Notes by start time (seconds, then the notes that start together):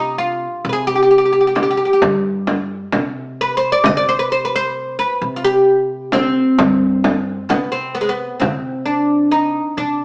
Already playing: C3 D#4
0.18 F4
0.65 C3
0.69 G#4 B4
0.87 G4
0.95 G4
1.03 G4
1.11 G4
1.18 G4
1.25 G4
1.33 G4
1.41 G4
1.47 G4
1.55 G4, frame drum
1.63 G4
1.71 G4
1.77 G4
1.85 G4
1.93 G4
2.02 G2, frame drum
2.47 frame drum
2.92 C3, frame drum
3.41 B4
3.57 C5
3.72 D5
3.84 C3 D#5, frame drum
3.97 D5
4.09 C5
4.19 B4
4.32 C5
4.45 B4
4.56 C5
4.99 B4
5.21 C3
5.36 F4
5.45 G4
6.12 C4, frame drum
6.58 G2, frame drum
7.04 frame drum
7.49 C3 B3, frame drum
7.72 C4
7.95 B3
8.01 G#3
8.09 B3
8.40 C3 C4, frame drum
8.86 D4
9.31 D#4
9.77 C3 D4